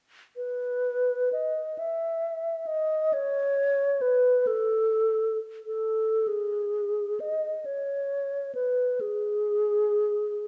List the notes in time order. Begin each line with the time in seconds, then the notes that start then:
0.36 B4
1.32 D#5
1.78 E5
2.66 D#5
3.13 C#5
4.01 B4
4.47 A4
5.67 A4
6.27 G#4
7.20 D#5
7.65 C#5
8.55 B4
9.00 G#4